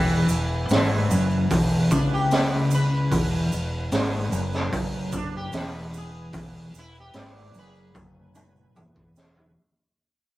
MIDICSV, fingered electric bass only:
0, 0, Header, 1, 2, 480
1, 0, Start_track
1, 0, Key_signature, 4, "major"
1, 0, Tempo, 806452
1, 1853, Time_signature, 4, 2, 24, 8
1, 6176, End_track
2, 0, Start_track
2, 0, Title_t, "Fingered electric bass"
2, 0, Program_c, 0, 33
2, 0, Note_on_c, 0, 28, 85
2, 162, Note_off_c, 0, 28, 0
2, 170, Note_on_c, 0, 28, 74
2, 396, Note_off_c, 0, 28, 0
2, 410, Note_on_c, 0, 32, 83
2, 636, Note_off_c, 0, 32, 0
2, 651, Note_on_c, 0, 30, 99
2, 876, Note_off_c, 0, 30, 0
2, 897, Note_on_c, 0, 28, 104
2, 1119, Note_off_c, 0, 28, 0
2, 1139, Note_on_c, 0, 37, 96
2, 1832, Note_off_c, 0, 37, 0
2, 1857, Note_on_c, 0, 28, 99
2, 2078, Note_off_c, 0, 28, 0
2, 2097, Note_on_c, 0, 28, 82
2, 2318, Note_off_c, 0, 28, 0
2, 2341, Note_on_c, 0, 32, 91
2, 2560, Note_off_c, 0, 32, 0
2, 2573, Note_on_c, 0, 30, 92
2, 2796, Note_off_c, 0, 30, 0
2, 2813, Note_on_c, 0, 30, 111
2, 3269, Note_off_c, 0, 30, 0
2, 3294, Note_on_c, 0, 28, 91
2, 3750, Note_off_c, 0, 28, 0
2, 3772, Note_on_c, 0, 28, 95
2, 3995, Note_off_c, 0, 28, 0
2, 4007, Note_on_c, 0, 28, 89
2, 4233, Note_off_c, 0, 28, 0
2, 4252, Note_on_c, 0, 32, 80
2, 4476, Note_off_c, 0, 32, 0
2, 4490, Note_on_c, 0, 30, 100
2, 4715, Note_off_c, 0, 30, 0
2, 4731, Note_on_c, 0, 30, 106
2, 5189, Note_off_c, 0, 30, 0
2, 5209, Note_on_c, 0, 28, 85
2, 5668, Note_off_c, 0, 28, 0
2, 6176, End_track
0, 0, End_of_file